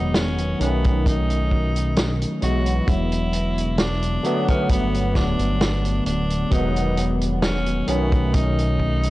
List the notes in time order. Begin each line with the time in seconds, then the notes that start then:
Already playing: E1 D#3 F#3 G#3 B3 D#4
0.14 C#4, snare, closed hi-hat
0.38 closed hi-hat
0.59 B1 D#3 F#3 A3 B3 C#4, closed hi-hat
0.84 kick, closed hi-hat
1.06 D#4, kick, closed hi-hat
1.30 closed hi-hat
1.51 kick
1.76 closed hi-hat
1.96 snare, closed hi-hat
2.22 closed hi-hat
2.41 B1 E3 F#3 G#3 B3 F#4, closed hi-hat
2.66 closed hi-hat
2.88 E1 E4, kick, closed hi-hat
3.12 closed hi-hat
3.33 closed hi-hat
3.58 closed hi-hat
3.78 D4, snare, closed hi-hat
4.02 closed hi-hat
4.23 D3 F#3 A3 B3, closed hi-hat
4.48 C#4, kick, closed hi-hat
4.69 G1 B3, kick, closed hi-hat
4.95 closed hi-hat
5.15 D1 D4, kick, snare
5.39 G1, closed hi-hat
5.61 snare, closed hi-hat
5.85 closed hi-hat
6.06 D1 D4, closed hi-hat
6.30 closed hi-hat
6.50 E1 D#3 F#3 G#3 B3 D#4, kick, closed hi-hat
6.76 closed hi-hat
6.97 closed hi-hat
7.21 closed hi-hat
7.42 C#4, snare, closed hi-hat
7.66 closed hi-hat
7.87 B1 D#3 F#3 A3 B3 C#4, closed hi-hat
8.12 kick, closed hi-hat
8.34 D#4, kick, closed hi-hat
8.59 closed hi-hat
8.80 kick
9.03 closed hi-hat